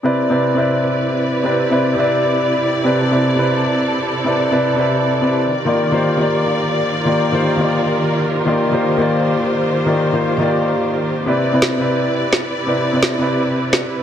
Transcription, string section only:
0.04 C3 E4 G4 B4 D5
2.85 A4
5.48 D#3 F4 G4 A#4 D5
8.29 C5
11.27 C3 E4 B4 D5

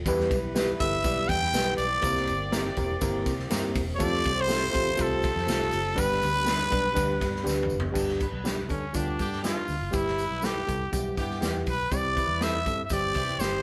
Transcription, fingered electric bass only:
0.06 E2
0.31 B1
0.80 G1
1.05 B1
1.29 E2
1.53 B1
1.78 B1
2.02 C2
2.28 G1
2.77 E1
3.02 G1
3.26 C3
3.51 G2
3.75 E1
4.00 F2
4.25 C2
4.75 A1
4.99 C2
5.36 F2
5.48 C2
5.73 F#1
5.98 G1
6.22 D2
6.72 B1
6.97 D2
7.21 G2
7.46 D2
7.70 F#1
7.95 G1
8.32 B1
8.70 D2
8.94 D2
9.19 G2
9.69 D2
9.81 F#1
9.94 G1
10.31 B1
10.68 C2
10.93 B1
11.17 G2
11.42 E2
11.67 B1
11.92 C2
12.27 E2
12.66 G2
12.90 G1
13.15 C3
13.38 G1

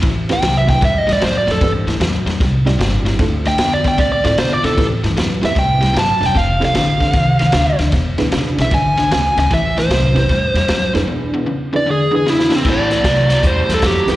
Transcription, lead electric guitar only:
0.33 G5
0.58 E5
0.70 G5
0.85 E5
0.98 D#5
1.13 D5
1.24 C5
1.38 D5
1.51 A4
3.48 G5
3.73 D5
3.88 G5
3.99 D5
4.12 D5
4.25 D5
4.39 C5
4.53 D5
4.65 A4
5.45 E5
5.59 G5
5.99 A5
6.26 G5
6.37 F5
6.65 F5
8.62 E5
8.74 G#5
9.13 G#5
9.40 G#5
9.54 E5
9.79 C5
11.76 D5
11.91 G#4
12.16 G#4
12.30 E4
12.56 C4
12.70 D5
13.47 C5
13.74 A4
13.86 G4
14.11 G4

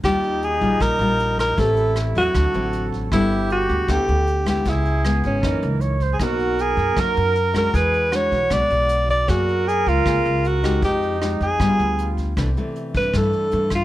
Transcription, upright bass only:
0.03 D#2
0.61 A#1
0.80 A#1
0.99 A#1
1.58 A1
2.15 E2
2.35 D2
2.55 A1
3.12 G1
3.69 D2
3.88 D2
4.09 D2
4.66 C#2
5.24 G#1
5.43 F#2
5.63 C#2
6.20 B1
6.77 F#2
6.97 F#2
7.17 F#2
7.74 E2
8.32 B1
8.51 B1
8.70 B1
9.29 F#2
9.86 C#2
10.06 C#2
10.26 C#2
10.82 F2
11.41 F2
11.59 G2
11.79 D2
12.37 C2
12.94 G2
13.14 G2
13.53 G2

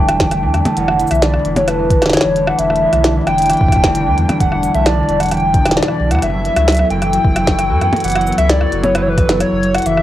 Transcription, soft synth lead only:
Already playing: G5
0.77 F#5
1.11 E5
1.22 D5
1.56 C#5
1.68 B4
2.13 C#5
2.47 F#5
2.59 E5
3.27 G5
4.40 F#5
4.75 E5
4.86 D5
5.20 F#5
5.31 G5
5.77 D5
6.11 F#5
6.22 E5
6.90 G5
8.04 F#5
8.38 E5
8.50 D5
8.84 C#5
8.95 B4
9.02 C#5
9.09 B4
9.40 C#5
9.75 F#5
9.86 E5

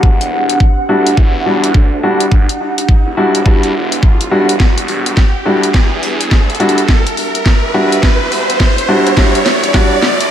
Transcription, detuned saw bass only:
0.03 E1
0.89 D2
1.17 E2
1.74 D2
2.21 G1
3.06 E1
3.46 E2
3.74 E1
4.31 B1
4.49 E1
4.60 E1
5.45 D2
5.74 E2
6.31 D2
6.78 G1
7.63 E1
8.03 E1
8.49 E1
9.07 E1
9.17 E1
10.03 D2

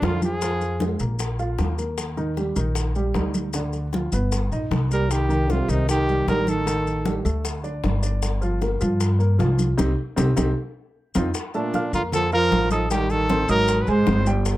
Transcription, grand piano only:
0.03 F3 F4
0.42 F3 F4
0.81 G#3 G#4
1.00 A#3 A#4
1.39 F4 F5
1.78 A#3 A#4
2.17 D#3 D#4
2.37 G3 G4
2.56 D#3 D#4
2.96 G3 G4
3.15 G3 D#4
3.55 D3 D4
3.94 F3 F4
4.13 B3 B4
4.52 D#4 D#5
4.91 A#3 A#4
5.29 D#3 D#4
5.50 G3 G4
5.69 D#3 D#4
6.08 G3 G4
6.28 D#3 D#4
6.66 D#3 D#4
7.05 G3 G4
7.24 A3 A4
7.64 D4 D5
8.02 D4 D5
8.41 F3 F4
8.61 A#3 A#4
8.81 F3 F4
9.19 A#3 A#4
9.38 F3 F4
9.78 C4 D#4 G4
10.16 C4 D#4 G4
10.37 C4 D#4 G4
11.15 C4 D#4 F4
11.55 A3 A4 A5
11.74 F4 F5 F6
11.94 A#3 A#4 A#5
12.32 F4 F5 F6
12.71 D#4 D#5 D#6
12.90 G3 G4 G5
13.30 C4 C5 C6
13.49 D#4 D#5 D#6
13.88 G#3 G#4 G#5
14.08 C4 C5 C6
14.27 G3 G4 G5

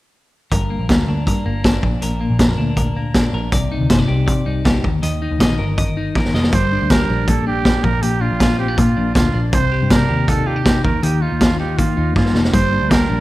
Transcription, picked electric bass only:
0.52 G1
0.79 A#1
0.90 D2
1.08 D2
1.27 G2
1.46 G1
1.83 A#1
2.02 A#1
2.31 A#1
2.39 F2
2.59 D2
3.33 A#1
3.52 C2
3.81 D2
3.90 G1
4.09 C2
4.28 C3
4.47 C2
4.84 D#2
5.03 D#2
5.31 D#2
5.41 A#1
5.60 G1
6.34 F1
6.53 G1
6.82 D2
7.10 A#1
7.84 A#1
8.03 A#1
8.31 A#1
8.78 A#2
8.97 A#1
9.16 D2
9.34 A#1
9.53 C2
9.82 G2
10.10 D#2
10.85 D#2
11.03 D#2
11.32 D#2
11.79 D#3
11.97 D#2
12.16 G2
12.34 F1
12.54 G1
12.82 D2
13.10 A#1

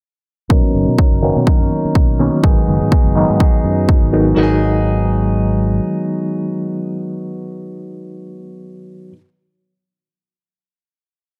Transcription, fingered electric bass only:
0.50 B1
0.74 F#1
0.88 B2
1.12 F#1
1.36 B2
1.47 muted fingered electric bass stroke
1.60 F#2
1.85 muted fingered electric bass stroke
1.95 B1
2.44 G#1
2.68 F#1
2.81 G#2
3.05 F#1
3.30 G#2
3.64 F#2
4.02 G#1
4.37 G#1

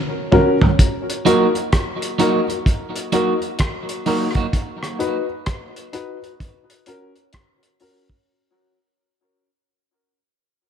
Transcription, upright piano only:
0.32 C#4 F#4 A#4
1.26 D#4 F#4 A#4
2.19 D#4 F#4 A#4
2.49 F#4 A#4
3.13 D#4 F#4 A#4
4.06 D#4 F#4 A#4
4.35 F#4 A#4
4.99 D#4 F#4 B4
5.93 D#4 F#4 B4
6.23 F#4 B4
6.87 C#4 F#4 A#4
7.80 C#4 F#4 A#4

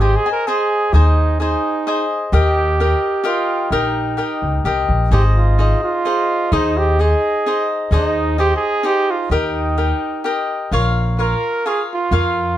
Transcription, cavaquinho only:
0.00 G#4 C5 D#5 G#5
0.26 C5 D#5 G#5
0.47 G#4 C5 D#5 G#5
0.94 G#4 C5 D#5 G#5
1.40 G#4 C5 D#5 G#5
1.87 G#4 C5 D#5 G#5
2.33 G4 A#4 D#5 G5
2.80 G4 A#4 D#5 G5
3.24 G4 A#4 D#5 G5
3.72 G4 A#4 D#5 G5
4.17 G4 A#4 D#5 G5
4.65 G4 A#4 D#5 G5
5.12 D#4 G#4 C5 D#5
5.58 D#4 G#4 C5 D#5
6.05 D#4 G#4 C5 D#5
6.52 D#4 G#4 C5 D#5
6.99 D#4 G#4 C5 D#5
7.46 D#4 G#4 C5 D#5
7.92 D#4 G#4 C5 D#5
8.38 D#4 G#4 C5 D#5
8.83 D#4 G#4 C5 D#5
9.31 G4 A#4 D#5 G5
9.78 G4 A#4 D#5 G5
10.24 G4 A#4 D#5 G5
10.72 F4 A#4 C#5 F5
11.19 F4 A#4 C#5 F5
11.66 F4 A#4 C#5 F5
12.12 F4 A#4 C#5 F5

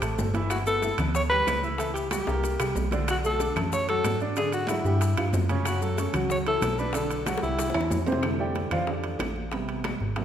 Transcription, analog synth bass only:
0.02 A1
0.18 G1
0.98 D2
1.47 C#2
2.28 C2
2.60 C2
2.76 B1
3.57 F#2
4.04 G#2
4.85 G2
5.18 G2
5.33 F#2
6.14 C#2
6.61 B1
7.43 C2
7.75 E2
7.91 F2
8.71 F2
9.20 A1
10.01 G#1

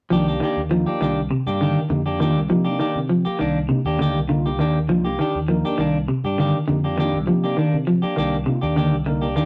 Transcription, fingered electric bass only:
0.11 C2
0.57 D#2
1.01 C2
1.46 G2
1.90 F2
2.36 C2
2.51 C3
2.96 C3
3.26 muted fingered electric bass stroke
3.40 C2
3.85 D#2
4.15 C2
4.60 D#2
4.89 C2
5.35 D#2
5.79 C2
6.24 G2
6.68 F2
7.13 C2
7.28 C3
7.73 C3
8.03 muted fingered electric bass stroke
8.18 C2
8.63 D#2
8.93 C2
9.37 D#2

